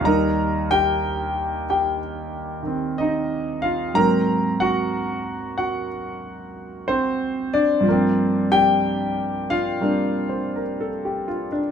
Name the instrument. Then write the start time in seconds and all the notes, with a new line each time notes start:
grand piano
0.01 D#2 D#3 G3
0.05 D#4 A#4 A#5
0.71 G4 G5
1.70 G4 G5
2.63 D#3 C4
2.98 D#4 D#5
3.62 F4 F5
3.94 G#2 F#3 A#3 C4 A#4 A#5
4.60 F#4 F#5
5.58 F#4 F#5
6.88 C4 C5
7.54 D4 D5
7.81 G2 F3
7.89 A#3 C4
8.52 G4 G5
9.50 F4 F5
9.81 G3 A#3 C4 D4
10.29 C5
10.56 A#4
10.81 A4
11.05 G4
11.28 F4
11.52 D4